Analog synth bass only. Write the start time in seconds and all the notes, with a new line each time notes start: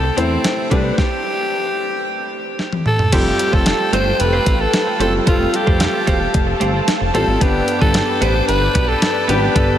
Already playing: C2
0.17 E2
0.71 C2
3.13 F1
3.53 F1
3.93 G1
4.20 F1
4.47 A1
5.00 F#1
5.27 F1
5.67 F1
6.07 E1
6.34 F1
6.61 G1
7.01 F1
7.14 A1
7.27 G#1
7.41 G1
7.81 G1
8.21 A1
8.49 G1
8.75 B1
9.29 G#1
9.56 G1